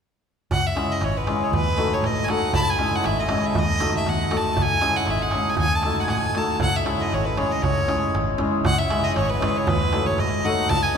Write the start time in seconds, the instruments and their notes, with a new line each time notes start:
0.51 fingered electric bass C#2, violin F#5, darbuka dum
0.64 violin E5, darbuka tek
0.75 hammered dulcimer G#3 C#4 E4 G#4, darbuka tek
0.92 violin D#5
1.01 fingered electric bass G#1, violin C#5, darbuka tek
1.17 violin B4
1.27 hammered dulcimer G#3 C#4 E4 G#4, darbuka tek
1.43 violin C#5
1.52 fingered electric bass D#2, violin B4, darbuka dum
1.67 darbuka tek
1.77 hammered dulcimer A3 D#4 F#4 A4, darbuka tek
1.93 violin C#5
2.03 fingered electric bass A2, violin D#5, darbuka tek
2.24 violin G#5
2.28 hammered dulcimer A3 D#4 F#4 A4, violin F#5, darbuka tek
2.53 fingered electric bass C#2, violin A5 B5, darbuka dum
2.62 violin A5
2.67 violin G#5, darbuka tek
2.79 hammered dulcimer G#3 C#4 E4 G#4, darbuka tek
2.96 violin F#5
3.04 fingered electric bass G#1, violin E5, darbuka tek
3.20 violin D#5
3.29 hammered dulcimer G#3 C#4 E4 G#4, darbuka tek
3.46 violin E5
3.55 fingered electric bass D#2, violin D#5, darbuka dum
3.79 hammered dulcimer A3 D#4 F#4 A4, darbuka tek
3.94 violin E5, darbuka tek
4.06 fingered electric bass D#2, violin F#5, darbuka tek
4.19 darbuka tek
4.30 hammered dulcimer A3 D#4 F#4 A4, darbuka tek
4.37 violin A5
4.44 darbuka tek
4.53 violin A5, darbuka dum
4.57 fingered electric bass C#2
4.62 violin G#5
4.69 darbuka tek
4.81 hammered dulcimer G#3 C#4 E4 G#4, darbuka tek
4.96 violin F#5
5.07 fingered electric bass G#1, violin E5, darbuka tek
5.22 violin F#5
5.31 hammered dulcimer G#3 C#4 E4 G#4, darbuka tek
5.49 violin G#5
5.57 fingered electric bass D#2, violin G#5, darbuka dum
5.75 violin A5
5.83 hammered dulcimer A3 D#4 F#4 A4, darbuka tek
6.00 violin F#5 G#5
6.08 fingered electric bass A2, violin F#5, darbuka tek
6.13 violin G#5
6.35 hammered dulcimer A3 D#4 F#4 A4, violin A5, darbuka tek
6.60 fingered electric bass C#2, violin F#5, darbuka dum
6.76 violin E5
6.85 hammered dulcimer G#3 C#4 E4 G#4, darbuka tek
7.01 violin D#5
7.12 fingered electric bass G#1, violin C#5, darbuka tek
7.25 violin B4
7.37 hammered dulcimer G#3 C#4 E4 G#4, violin C#5, darbuka tek
7.52 violin D#5
7.62 fingered electric bass C#2, violin C#5, darbuka dum
7.77 darbuka tek
7.87 hammered dulcimer G#3 C#4 E4 G#4, darbuka tek
8.02 darbuka tek
8.14 fingered electric bass G#1, darbuka tek
8.38 hammered dulcimer G#3 C#4 E4 G#4, darbuka tek
8.53 darbuka tek
8.65 fingered electric bass C#2, violin F#5, darbuka dum
8.78 violin E5, darbuka tek
8.90 hammered dulcimer G#3 C#4 E4 G#4, darbuka tek
9.04 violin D#5
9.16 fingered electric bass G#1, violin C#5, darbuka tek
9.29 violin B4
9.40 hammered dulcimer G#3 C#4 E4 G#4, darbuka tek
9.57 violin C#5
9.67 fingered electric bass D#2, violin B4, darbuka dum
9.92 hammered dulcimer A3 D#4 F#4 A4, darbuka tek
10.07 violin C#5
10.18 fingered electric bass G#2, violin D#5, darbuka tek
10.44 hammered dulcimer A3 D#4 F#4 A4, violin F#5
10.70 fingered electric bass C#2, violin A5, darbuka dum
10.82 violin G#5, darbuka tek
10.94 hammered dulcimer C#4